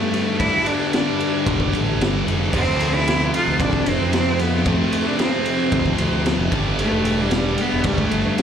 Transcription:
0.00 0.11 G2 loud
0.00 0.56 G2 loud
0.00 0.12 D3 loud
0.00 0.11 G3 loud
0.00 0.41 A3 loud
0.00 0.39 B3 loud
0.00 0.39 D4 loud
0.12 0.38 G2 medium
0.12 0.38 D3 medium
0.12 0.38 G3 medium
0.12 snare soft
0.12 ride medium
0.39 2.24 G2 loud
0.39 2.25 D3 loud
0.39 2.25 G3 loud
0.39 2.52 B3 loud
0.39 2.52 D4 loud
0.39 0.68 E4 loud
0.39 kick loud
0.39 ride loud
0.66 0.93 D4 loud
0.66 ride medium
0.93 1.70 D4 loud
0.93 snare loud
0.93 ride loud
1.20 ride medium
1.47 1.67 E1 loud
1.47 kick loud
1.47 ride loud
1.60 kick medium
1.73 1.97 A1 medium
1.73 kick medium
1.73 ride medium
2.00 2.24 G1 medium
2.00 snare loud
2.00 ride loud
2.26 2.50 F1 medium
2.26 2.52 G2 medium
2.26 2.52 D3 medium
2.26 2.51 G3 medium
2.26 ride medium
2.53 2.63 F1 loud
2.53 4.38 F2 loud
2.53 4.38 C3 loud
2.53 4.38 F3 loud
2.53 4.65 A3 loud
2.53 4.65 C4 loud
2.53 2.97 C4 loud
2.53 kick loud
2.53 crash loud
2.67 3.29 D2 medium
2.80 ride medium
2.95 3.34 E4 loud
3.07 snare loud
3.07 ride loud
3.34 3.62 F4 loud
3.34 ride medium
3.48 3.62 D2 medium
3.60 3.80 C2 loud
3.60 3.90 D4 loud
3.60 kick loud
3.60 ride loud
3.73 kick medium
3.86 3.97 F1 loud
3.86 4.14 C4 loud
3.86 ride medium
4.01 4.83 F2 medium
4.13 4.41 C4 loud
4.13 snare loud
4.13 ride loud
4.39 4.65 F2 medium
4.39 4.65 C3 medium
4.39 4.64 F3 medium
4.39 4.66 B3 loud
4.39 snare soft
4.39 ride medium
4.65 6.51 F2 loud
4.65 6.52 C3 loud
4.65 6.52 F3 loud
4.65 4.77 A3 loud
4.65 6.52 A3 loud
4.65 6.52 C4 loud
4.65 kick loud
4.65 ride loud
4.78 5.08 A3 medium
4.92 ride medium
5.07 5.20 D4 loud
5.19 6.23 C4 medium
5.19 snare loud
5.19 ride loud
5.46 ride medium
5.72 5.93 D2 loud
5.72 kick loud
5.72 ride loud
5.86 kick medium
5.98 6.10 D2 loud
5.98 ride medium
6.12 6.33 D2 medium
6.26 snare loud
6.26 ride loud
6.39 6.50 F1 loud
6.51 6.84 G1 loud
6.51 8.37 G2 medium
6.51 8.37 D3 loud
6.51 8.41 G3 loud
6.51 8.42 B3 loud
6.51 8.42 D4 loud
6.51 kick loud
6.51 ride medium
6.79 ride loud
6.84 7.23 A3 loud
6.93 7.55 E1 medium
7.05 ride medium
7.21 7.63 G3 loud
7.31 snare loud
7.31 ride loud
7.58 7.88 B3 loud
7.58 ride medium
7.74 7.86 E1 medium
7.84 8.06 D2 loud
7.84 8.00 G3 loud
7.84 kick loud
7.84 ride loud
7.98 8.39 A3 medium
7.98 kick medium
8.11 8.23 G1 loud
8.11 ride medium
8.26 8.42 G2 loud
8.38 8.42 G2 medium
8.38 ride loud

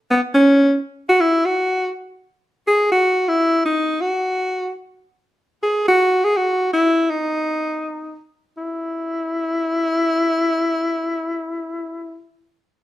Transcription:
0.10 0.21 B3 medium
0.34 0.79 C#4 medium
1.09 1.22 F#4 loud
1.21 1.47 E4 medium
1.45 1.93 F#4 loud
2.67 2.89 G#4 loud
2.91 3.30 F#4 loud
3.28 3.64 E4 medium
3.65 4.02 D#4 medium
4.01 4.74 F#4 medium
5.63 5.84 G#4 medium
5.88 6.26 F#4 loud
6.24 6.38 G#4 medium
6.37 6.72 F#4 medium
6.73 7.11 E4 medium
7.10 8.20 D#4 medium
8.57 12.27 E4 medium

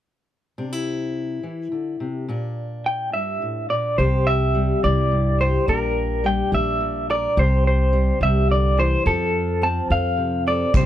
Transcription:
0.58 1.43 C3 soft
0.58 0.73 D4 soft
0.73 2.29 E4 soft
1.43 1.71 E3 soft
1.72 2.00 D3 soft
2.00 2.29 C3 soft
2.28 3.13 A#2 medium
2.28 3.99 D4 soft
2.86 3.13 G5 medium
3.13 3.42 G2 soft
3.13 3.66 E5 medium
3.42 3.69 A2 soft
3.70 3.98 A#2 soft
3.70 3.96 D5 medium
3.98 4.72 C2 medium
3.98 5.11 C3 medium
3.98 5.40 G4 soft
3.98 4.27 C5 medium
4.27 4.84 E5 medium
4.54 6.24 G3 soft
4.84 5.57 C2 medium
4.84 5.65 E4 soft
4.84 5.42 D5 medium
5.11 5.67 G2 soft
5.41 7.09 G4 medium
5.41 5.69 C5 medium
5.67 6.41 A#1 medium
5.67 6.79 A#2 medium
5.67 6.52 D4 soft
5.67 6.27 A#4 medium
6.24 7.33 G3 medium
6.24 6.51 G5 medium
6.52 7.25 A#1 medium
6.52 7.37 D4 medium
6.52 7.06 E5 medium
6.80 7.33 A#2 soft
7.10 7.34 A#4 medium
7.10 7.39 D5 medium
7.37 8.10 C2 medium
7.37 8.20 C3 medium
7.37 9.06 G4 medium
7.37 7.66 C5 medium
7.67 8.19 C5 medium
7.93 9.02 G3 medium
8.21 8.94 C2 medium
8.21 8.49 C3 medium
8.21 8.48 E5 medium
8.49 8.77 D3 medium
8.49 8.79 D5 medium
8.78 9.06 E3 medium
8.78 9.05 C5 medium
9.05 9.79 F2 medium
9.05 10.74 F3 medium
9.05 10.71 F4 soft
9.05 9.64 A4 medium
9.62 10.71 C4 medium
9.62 9.91 A5 medium
9.90 10.63 F2 medium
9.90 10.46 A4 medium
9.90 10.47 F5 medium
10.17 10.72 C3 soft
10.47 10.71 A4 soft
10.47 10.73 D5 medium
10.73 10.86 C2 medium
10.73 10.86 C3 medium
10.73 10.86 G4 medium
10.73 10.86 C5 medium
10.73 kick medium
10.73 closed hi-hat medium

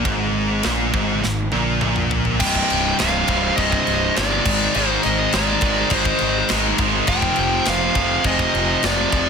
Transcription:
0.05 0.60 G#1 loud
0.05 0.63 G#2 loud
0.05 kick loud
0.05 ride bell medium
0.63 0.93 A#1 medium
0.63 0.93 A#2 medium
0.63 snare medium
0.63 ride bell medium
0.94 1.21 G#1 medium
0.94 1.20 G#2 medium
0.94 kick loud
1.22 1.52 G#1 medium
1.22 1.46 G#2 medium
1.22 snare medium
1.52 1.81 A#1 medium
1.52 1.81 A#2 loud
1.52 high tom medium
1.81 2.37 A#1 medium
1.81 2.40 A#2 medium
1.81 mid tom medium
1.96 mid tom medium
2.11 floor tom loud
2.25 floor tom medium
2.40 2.62 C1 medium
2.40 2.99 C2 medium
2.40 2.99 G2 loud
2.40 3.00 C3 loud
2.40 4.44 C3 medium
2.40 4.45 G3 medium
2.40 4.45 C4 medium
2.40 7.05 D#4 loud
2.40 2.97 D#5 medium
2.40 2.95 G5 loud
2.40 kick loud
2.40 crash loud
2.55 kick medium
2.70 2.92 C1 medium
2.70 crash medium
2.99 3.22 C1 medium
2.99 3.28 C2 medium
2.99 3.28 G2 medium
2.99 3.28 C3 medium
2.99 3.55 C5 medium
2.99 3.60 F5 loud
2.99 snare loud
2.99 crash medium
3.28 3.50 C1 loud
3.28 3.56 C2 medium
3.28 3.56 G2 medium
3.28 3.57 C3 medium
3.28 kick medium
3.28 crash medium
3.56 3.79 C1 medium
3.56 4.14 C2 medium
3.56 4.14 G2 medium
3.56 4.16 C3 loud
3.56 4.17 D#5 loud
3.56 kick loud
3.56 crash medium
3.60 4.14 C5 medium
3.72 kick medium
3.87 4.08 C1 medium
3.87 crash medium
4.15 4.38 G1 loud
4.15 4.44 C2 medium
4.15 4.44 G2 loud
4.15 4.44 C3 loud
4.15 4.72 G#4 medium
4.15 4.76 D5 medium
4.15 snare loud
4.15 crash medium
4.46 4.67 G#1 loud
4.46 4.74 G#2 loud
4.46 4.74 D#3 loud
4.46 4.75 G#3 loud
4.46 7.06 G#3 medium
4.46 7.07 A#4 medium
4.46 7.07 C5 loud
4.46 kick loud
4.46 crash loud
4.74 4.96 G#1 loud
4.74 5.32 G#2 medium
4.74 5.32 D#3 loud
4.74 5.34 G#3 loud
4.74 5.03 G#4 medium
4.74 5.03 C5 loud
4.74 crash medium
5.03 5.26 G#1 medium
5.03 5.33 C5 medium
5.03 5.34 D#5 medium
5.03 crash medium
5.33 5.55 G#1 medium
5.33 5.61 G#2 medium
5.33 5.63 D#3 medium
5.33 5.63 G#3 loud
5.33 5.88 G#4 medium
5.33 5.94 D5 medium
5.33 snare loud
5.33 crash medium
5.61 5.83 G#1 medium
5.61 5.91 G#2 medium
5.61 5.91 D#3 medium
5.61 5.91 G#3 medium
5.61 kick loud
5.61 crash medium
5.90 6.12 G#1 loud
5.90 6.50 G#2 loud
5.90 6.50 D#3 loud
5.90 6.50 G#3 loud
5.90 kick loud
5.90 crash medium
5.94 6.47 G#4 medium
5.94 6.47 C5 medium
6.05 kick medium
6.19 6.42 G#1 loud
6.19 crash medium
6.49 6.72 G#1 medium
6.49 6.79 G#2 medium
6.49 6.79 D#3 medium
6.49 6.79 G#3 loud
6.49 snare loud
6.49 crash medium
6.78 7.00 G#1 medium
6.78 7.07 G#2 loud
6.78 7.07 D#3 loud
6.78 7.07 G#3 loud
6.78 kick loud
6.78 crash medium
7.07 7.29 F1 loud
7.07 7.65 F2 medium
7.07 7.66 C3 loud
7.07 7.66 F3 loud
7.07 9.29 F3 medium
7.07 9.29 G#4 loud
7.07 7.64 C5 medium
7.07 7.69 G5 loud
7.07 9.29 G5 medium
7.07 kick loud
7.07 crash medium
7.11 9.29 C4 medium
7.22 kick medium
7.36 7.59 F1 medium
7.36 crash medium
7.65 7.88 F1 loud
7.65 7.95 F2 medium
7.65 7.95 C3 medium
7.65 7.96 F3 loud
7.65 8.23 C5 medium
7.65 8.23 F5 loud
7.65 snare loud
7.65 crash medium
7.95 8.17 F1 medium
7.95 8.23 F2 medium
7.95 8.23 C3 medium
7.95 8.24 F3 medium
7.95 kick medium
7.95 crash medium
8.24 8.46 F1 loud
8.24 8.81 F2 loud
8.24 8.81 C3 loud
8.24 8.82 F3 loud
8.24 8.81 C5 medium
8.24 8.85 D#5 loud
8.24 kick loud
8.24 crash medium
8.39 kick medium
8.55 8.76 F1 loud
8.55 crash medium
8.83 9.05 F1 loud
8.83 9.11 F2 medium
8.83 9.11 C3 loud
8.83 9.12 F3 loud
8.83 9.29 G#4 medium
8.83 9.29 D5 medium
8.83 snare loud
8.83 crash medium
9.12 9.29 F1 medium
9.12 9.29 F2 medium
9.12 9.29 C3 loud
9.12 9.29 F3 loud
9.12 kick medium
9.12 crash medium

